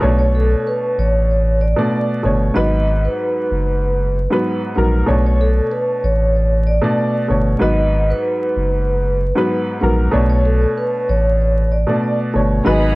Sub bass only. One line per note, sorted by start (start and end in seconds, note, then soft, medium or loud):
0.03 0.55 B1 loud
0.98 1.75 A1 loud
2.25 2.50 G1 medium
2.56 3.08 G#1 loud
3.51 4.27 F#1 loud
4.77 5.03 A#1 medium
5.09 5.60 B1 loud
6.04 6.80 A1 loud
7.30 7.56 G1 medium
7.62 8.13 G#1 loud
8.56 9.33 F#1 loud
9.83 10.08 A#1 medium
10.14 10.66 B1 loud
11.09 11.85 A1 loud
12.35 12.61 G1 medium
12.67 12.95 G#1 loud